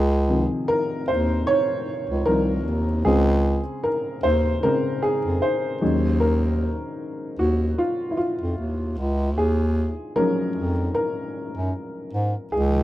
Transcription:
Already playing: C#2 G#4
0.28 C3 D#3 F3
0.68 A#4
1.08 D#2 C5
1.47 C#5
2.10 C#2
2.26 C2 D#3 F3 C4 A#4
2.66 D#2
3.05 C#2 C#3 G#3 C4 G#4
3.83 A#4
4.23 D#2 C5
4.63 C#3 G#3 C4 A#4
5.03 G#4
5.25 F2
5.42 C5
5.81 D#2 D#3 F#3 G#3 C#4
6.20 A#4
7.39 D#2 F#4
7.78 F4
8.11 E4
8.17 F4
8.41 F2
8.58 D#2
8.98 C#2
9.37 D#2 G#4
10.16 F3 F#3 G#3 C#4 A#4
10.56 F2
10.95 A#4
11.57 F#2
12.13 G#2
12.52 C#2 C3 D#3 F3 G#3 D#4 G#4

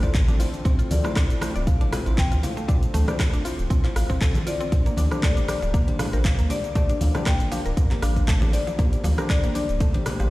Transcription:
Already playing: A1 D3 F3 A3 C4
0.03 E4 F4 C5 D5, kick, closed hi-hat, cabasa
0.14 kick, clap, closed hi-hat, cabasa
0.28 D4, closed hi-hat, high conga, cabasa
0.40 E4 F4 C5, open hi-hat, cabasa
0.54 closed hi-hat, cabasa
0.65 D2 C4 E4 F4 C5, kick, closed hi-hat, cabasa
0.79 F4, closed hi-hat, cabasa
0.91 D2 D5, open hi-hat, high conga, cabasa
1.04 A3 E4 F4 C5, cross-stick, closed hi-hat, high conga, cabasa
1.16 D4, kick, cross-stick, clap, closed hi-hat, cabasa
1.30 A1, closed hi-hat, cabasa
1.41 A3 E4 F4 C5, cross-stick, open hi-hat, high conga, cabasa
1.55 D1 D5, closed hi-hat, cabasa
1.67 F5, kick, closed hi-hat, cabasa
1.81 A1 D4 E4 F4 C5, closed hi-hat, high conga
1.93 F4, cross-stick, open hi-hat, low conga, cabasa
2.06 A1 E4 F4 C5, closed hi-hat, cabasa
2.17 C4 G5, kick, clap, closed hi-hat, high conga, cabasa
2.32 D2 F4, closed hi-hat, cabasa
2.43 E4 F4 C5 F5, open hi-hat, low conga, cabasa
2.57 A3, closed hi-hat, cabasa
2.68 D4 F4 C5, kick, closed hi-hat, low conga, cabasa
2.83 closed hi-hat, cabasa
2.94 D2 A3, open hi-hat, high conga, cabasa
3.08 D4 F4 C5 D5, cross-stick, closed hi-hat, high conga, low conga, cabasa
3.20 kick, cross-stick, clap, closed hi-hat, cabasa
3.33 A1 D4, closed hi-hat, cabasa
3.45 E4 F4 C5, open hi-hat, cabasa
3.59 D1, closed hi-hat, cabasa
3.70 C2 C4, kick, closed hi-hat, cabasa
3.84 E4 F4 C5, clap, closed hi-hat
3.96 A1 F5, cross-stick, open hi-hat, cabasa
4.10 A1 C4 E4 F4 C5, kick, closed hi-hat, cabasa
4.21 A4, kick, clap, closed hi-hat, cabasa
4.35 closed hi-hat, high conga, cabasa
4.46 E4 F4 C5 D5, open hi-hat, cabasa
4.61 C4, closed hi-hat, cabasa
4.72 D2 G3 A#3 D4 G4 C5, kick, closed hi-hat, cabasa
4.86 A#3, closed hi-hat, cabasa
4.97 D2 D4, open hi-hat, high conga, cabasa
5.11 D4 G4 C5, cross-stick, closed hi-hat, high conga, cabasa
5.23 A3 D5, kick, cross-stick, clap, closed hi-hat, cabasa
5.37 A1 D4, closed hi-hat, cabasa
5.48 D4 G4 C5 D5, cross-stick, open hi-hat, high conga, cabasa
5.62 D1 F3, closed hi-hat, cabasa
5.74 A#3, kick, closed hi-hat, cabasa
5.88 A1 D4 G4 C5, closed hi-hat, high conga
5.99 F3, cross-stick, open hi-hat, low conga, cabasa
6.13 A1 D4 G4 A#4 C5, closed hi-hat, cabasa
6.25 F5, kick, clap, closed hi-hat, high conga, cabasa
6.38 D2 A#3, closed hi-hat, cabasa
6.50 D4 G4 C5 D5, open hi-hat, low conga, cabasa
6.64 closed hi-hat, cabasa
6.75 A3 D4 G4 C5 D5, kick, closed hi-hat, low conga, cabasa
6.89 D4, closed hi-hat, cabasa
7.01 D2 F5, open hi-hat, high conga, cabasa
7.15 F3 D4 G4 C5, cross-stick, closed hi-hat, high conga, low conga, cabasa
7.26 A#3 G5, kick, cross-stick, clap, closed hi-hat, cabasa
7.40 A1, closed hi-hat, cabasa
7.51 F3 D4 G4 C5 F5, open hi-hat, cabasa
7.65 D1 A#4, closed hi-hat, cabasa
7.77 F2, kick, closed hi-hat, cabasa
7.91 A#3 D4 G4 C5, clap, closed hi-hat
8.02 A1 D4 F5, cross-stick, open hi-hat, cabasa
8.16 D4 G4 C5, kick, closed hi-hat, cabasa
8.28 A3, kick, clap, closed hi-hat, cabasa
8.42 D4, closed hi-hat, high conga, cabasa
8.53 D4 G4 C5 D5, open hi-hat, cabasa
8.67 F3, closed hi-hat, cabasa
8.78 D2 A#3 D4 G4 C5, kick, closed hi-hat, cabasa
8.93 closed hi-hat, cabasa
9.04 D2 F3, open hi-hat, high conga, cabasa
9.18 D4 G4 A#4 C5, cross-stick, closed hi-hat, high conga, cabasa
9.30 D5, kick, cross-stick, clap, closed hi-hat, cabasa
9.43 A1 A#3, closed hi-hat, cabasa
9.55 D4 G4 C5 D5, open hi-hat, high conga, cabasa
9.69 D1, closed hi-hat, cabasa
9.80 A3, kick, closed hi-hat, cabasa
9.94 A1 D4 G4 C5, closed hi-hat, high conga
10.06 cross-stick, open hi-hat, low conga, cabasa
10.20 A1 F3 D4 G4 C5, closed hi-hat, cabasa

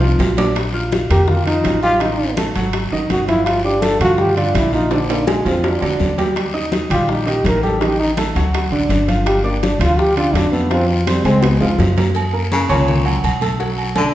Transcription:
Already playing: C2
0.01 F3 F4 F5, high bongo, high conga
0.19 A#1, high bongo, low bongo, high conga, low timbale, short guiro
0.37 D4 D5 D6, high conga, low timbale, short guiro
0.56 high bongo, high conga, high timbale, long guiro
0.73 F4 F5 F6, high bongo, high conga
0.92 high bongo, high conga, high timbale, short guiro
1.10 F2 A#3 G4 A#4 A#5, high bongo, low conga, high timbale, short guiro
1.28 F4, high bongo, high conga, low conga, long guiro
1.46 F3 D#4 F4 F5, high bongo, high conga, high timbale
1.64 A1, high bongo, low bongo, high conga, high timbale, low timbale, short guiro
1.83 G3 F4 G4 G5, high conga, short guiro
2.00 D#3 D#4 D#5, high bongo, high conga, high timbale, long guiro
2.19 high bongo, high conga
2.37 A3 A4 A5, high bongo, high conga, high timbale, short guiro
2.55 G#1 F#3 F#4 F#5, high bongo, high conga, high timbale, short guiro
2.73 high bongo, high conga, high timbale, long guiro
2.92 G#1 D#3 D#4 D#5, high bongo, high conga
3.10 G1 F#4, high bongo, low bongo, high conga, high timbale, short guiro
3.28 F3 E4 F4 F5, high conga, high timbale, short guiro
3.45 F4, high bongo, high conga, high timbale, long guiro
3.64 D4 G4 D5 D6, high bongo, high conga
3.81 A4, high bongo, high conga, high timbale, short guiro
4.00 G2 F3 F4 F#4 F5, high bongo, low conga, high timbale, short guiro
4.18 G4, high bongo, high conga, low conga, long guiro
4.36 D3 D4 F4 D5, high bongo, high conga, high timbale
4.54 A#1 E4, high bongo, low bongo, high conga, high timbale, low timbale, short guiro
4.73 F3 D#4 F4 F5, short guiro
4.91 D3 D4 D5, high bongo, high conga, high timbale, long guiro
5.09 A#3, high bongo, high conga, high timbale
5.27 G#3 G#4 G#5, high bongo, high conga, low timbale, short guiro
5.45 F2 F3 C4 F4 F5, high bongo, high conga, low timbale, short guiro
5.64 D4, high bongo, high conga, low timbale, long guiro
5.81 F2 D3 D4 D5, high bongo, high conga, low timbale
6.00 D#2, high bongo, low bongo, high conga, short guiro
6.18 G3 G4 G5, high conga, low timbale, short guiro
6.36 high bongo, high conga, high timbale, long guiro
6.54 D#4 D#5 D#6, high bongo, high conga
6.72 high bongo, high conga, high timbale, short guiro
6.90 A#1 G3 F4 G4 G5, high bongo, low conga, high timbale, short guiro
7.08 D#4, high bongo, high conga, long guiro
7.26 D#3 D#4 G4 D#5, high bongo, high conga, high timbale
7.44 A1 A#4, high bongo, low bongo, high conga, high timbale, low timbale, short guiro
7.63 G3 G4 A4 G5, high conga, short guiro
7.81 D#3 D#4 G4 D#5, high bongo, high conga, high timbale, long guiro
7.99 D#4, high bongo, high conga
8.17 A3 A4 A5, high bongo, high conga, high timbale, short guiro
8.35 D2 F#3 F#4 F#5, high bongo, high conga, high timbale, short guiro
8.54 high bongo, high conga, high timbale, long guiro
8.71 A1 D3 D4 D5, high bongo, high conga
8.89 G1, high bongo, low bongo, high conga, high timbale, short guiro
9.08 F3 F4 F5, high conga, high timbale, short guiro
9.25 G4, high bongo, high conga, high timbale, long guiro
9.44 A#3 D4 D5 D6, high bongo, high conga
9.63 D4, high bongo, high conga, high timbale, short guiro
9.79 D2 F3 F4 F5, high bongo, low conga, high timbale, short guiro
9.99 G4, high bongo, high conga, long guiro
10.17 D3 D4 F4 D5, high bongo, high conga, high timbale
10.34 F2 D4, high bongo, low bongo, high conga, high timbale, low timbale, short guiro
10.52 A3 B3 A4 A5, short guiro
10.71 F3 C4 F4 F5, high bongo, high conga, high timbale, long guiro
10.89 D#3, high bongo, high conga
11.07 G3 C4 C5 C6, high bongo, high conga, high timbale, short guiro
11.24 C#2 G#3 C4 G#4 G#5, high bongo, high conga, high timbale, short guiro
11.42 B3, high bongo, high conga, high timbale, long guiro
11.60 F2 F3 G#3 F4 F5, low bongo, high conga, high timbale
11.78 F#2, low bongo, high conga, low timbale, short guiro
11.97 A#3 A#4 A#5, low bongo, high conga, low timbale, short guiro
12.15 cowbell, high conga, low agogo, long guiro
12.33 A#3 A#4 A#5, high conga
12.52 C#3, cowbell, high conga, low agogo, short guiro
12.69 C#2 A#2 C#4 C#5 C#6, cowbell, low conga, low agogo, short guiro
12.88 cowbell, high conga, low conga, long guiro
13.05 F#3 F#4 F#5, high conga, low agogo
13.24 B1, cowbell, high conga, low agogo, short guiro
13.41 A3 A4 A5, cowbell, high conga, low agogo, short guiro
13.60 F#3 F#4 F#5, cowbell, long guiro
13.78 high conga, low agogo
13.95 D3 A3 A4 A5, cowbell, high conga, low agogo, short guiro

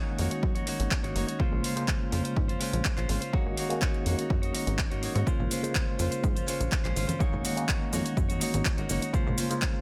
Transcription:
Already playing: D#3 G#3 A#3 C#4 D#4 F#4 C#5
0.18 F2 A#3 D#4 F#4 C#5, open hi-hat
0.31 D#4 F#4 C#5, closed hi-hat
0.43 F#2, kick
0.55 F2 D#4 F#4 C#5, closed hi-hat
0.66 A#3 D#4 F#4 C#5, open hi-hat
0.80 G#1, closed hi-hat
0.91 kick, clap
1.03 G#1 A#3 D#4 F#4 C#5, closed hi-hat
1.15 F#1 A#3 D#4 F#4 C#5, open hi-hat
1.27 D#4 F#4 C#5, closed hi-hat
1.39 A#1 C#3 G#3 A#3 C#4 F4 C5, kick
1.52 A#1
1.63 G#3 C#4 F4 C5, open hi-hat
1.75 C#3 G#3 A#3 F4 C5, closed hi-hat
1.87 G#3 C#4 F4 C5, kick, clap
2.11 F2 G#3 C#4 F4 C5, open hi-hat
2.24 C#4 F4 C5, closed hi-hat
2.36 G#2, kick
2.48 F2 C#4 F4 C5, closed hi-hat
2.60 G#3 C#4 F4 C5, open hi-hat
2.73 A#1, closed hi-hat
2.85 kick, clap
2.97 A#1 G#3 C#4 F4 C5, clap, closed hi-hat
3.08 G#1 G#3 C#4 F4 C5, open hi-hat
3.21 C#4 F4 C5, closed hi-hat
3.33 G#1 D#3 G#3 A#3 C#4 D#4 F#4 C#5, kick
3.46 G#1
3.57 A#3 D#4 F#4 C#5, open hi-hat
3.69 D#3 G#3 A#3 C#4 F#4, closed hi-hat
3.82 D#4 F#4 C#5, kick, clap
3.94 closed hi-hat
4.05 F2 A#3 D#4 F#4 C#5, open hi-hat
4.18 D#4 F#4 C#5, closed hi-hat
4.30 F#2, kick
4.42 F2 D#4 F#4 C#5, closed hi-hat
4.53 A#3 D#4 F#4 C#5, open hi-hat
4.67 G#1, closed hi-hat
4.79 kick, clap
4.90 G#2 A#3 D#4 F#4 C#5, closed hi-hat
5.02 A#3 D#4 F#4 C#5, open hi-hat
5.15 G#2 D#4 F#4 C#5, closed hi-hat
5.26 A#1 C#3 G#3 A#3 C#4 F4 C5, kick, maracas, shaker
5.39 A#1, low conga, maracas
5.50 G#3 C#4 F4 C5, open hi-hat, maracas, shaker
5.62 C#3 G#3 A#3 F4 C5, closed hi-hat, maracas, shaker
5.75 G#3 C#4 F4 C5, kick, clap, shaker
5.88 maracas
5.98 F2 G#3 C#4 F4 C5, open hi-hat, maracas, shaker
6.11 C#4 F4 C5, closed hi-hat, maracas, shaker
6.24 G#2, kick, maracas, shaker
6.35 F2 C#4 F4 C5, closed hi-hat, maracas, shaker
6.47 G#3 C#4 F4 C5, open hi-hat, maracas, shaker
6.60 A#1, closed hi-hat, maracas, shaker
6.72 kick, clap, shaker
6.84 A#1 G#3 C#4 F4 C5, clap, closed hi-hat, maracas
6.95 G#1 G#3 C#4 F4 C5, open hi-hat, maracas, shaker
7.07 C#4 F4 C5, closed hi-hat, high conga, maracas, shaker
7.19 G#1 D#3 G#3 A#3 C#4 D#4 F#4 C#5, kick, shaker, maracas
7.33 G#1, low conga, maracas
7.43 A#3 D#4 F#4 C#5, open hi-hat, maracas, shaker
7.56 D#3 G#3 A#3 C#4 F#4, closed hi-hat, shaker, maracas
7.68 A#3 D#4 F#4 C#5, kick, clap, shaker
7.82 maracas
7.92 F2 A#3 D#4 F#4 C#5, open hi-hat, shaker, maracas
8.04 D#4 F#4 C#5, closed hi-hat, shaker, maracas
8.17 F#2, kick, maracas, shaker
8.29 F2 D#4 F#4 C#5, closed hi-hat, high conga, shaker, maracas
8.40 A#3 D#4 F#4 C#5, open hi-hat, shaker, maracas
8.54 G#1, closed hi-hat, shaker, maracas
8.65 kick, clap, shaker
8.77 G#1 A#3 D#4 F#4 C#5, closed hi-hat, maracas
8.89 F#1 A#3 D#4 F#4 C#5, open hi-hat, shaker, maracas
9.01 D#4 F#4 C#5, closed hi-hat, shaker, maracas
9.13 A#1 C#3 G#3 A#3 C#4 F4 C5, kick, shaker, maracas
9.27 A#1, low conga, maracas
9.37 G#3 C#4 F4 C5, open hi-hat, shaker, maracas
9.49 C#3 G#3 A#3 F4 C5, closed hi-hat, shaker, maracas
9.61 G#3 C#4 F4 C5, kick, clap, shaker
9.75 maracas

